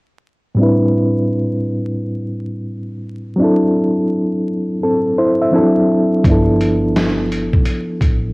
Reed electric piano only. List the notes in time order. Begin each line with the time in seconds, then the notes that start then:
0.55 A2 G3 C4
0.60 D4 E4 B4
3.36 F#3 C4 D4
3.42 E4 A4
4.83 C4 A4
5.18 E4 C5
5.42 E5
5.51 F3 C4 D4 E4
5.56 F#3 A4
6.23 F3 B3
6.28 D4 E4
6.32 A4